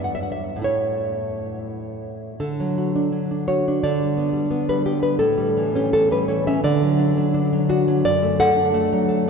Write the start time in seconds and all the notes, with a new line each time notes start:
Already playing: G2 B3 E4
0.04 F#5
0.15 E5
0.23 F#5
0.32 E5
0.56 A2 A3
0.62 E4 C#5
2.40 D3 A4
2.60 F#3
2.78 F#4
2.96 D4
3.12 F#3
3.31 D4
3.48 F#4 C#5
3.68 D4
3.83 D3 D5
4.00 G3
4.17 B3
4.33 G3
4.51 B3
4.69 G3 B4
4.86 B3 G4
5.02 G3 B4
5.19 A2 A4
5.38 G3
5.57 E3
5.75 C#4 G4
5.93 E3 A4
6.11 G3 B4
6.28 E3 C#5
6.47 C#4 E5
6.64 D3 D5
6.82 F#3
6.99 D4
7.17 F#3
7.34 D4
7.53 F#3
7.69 D4 F#4
7.88 F#3
8.05 F#2 D5
8.23 A3
8.40 A4 F#5
8.56 D4
8.74 A3
8.93 F#3
9.09 A4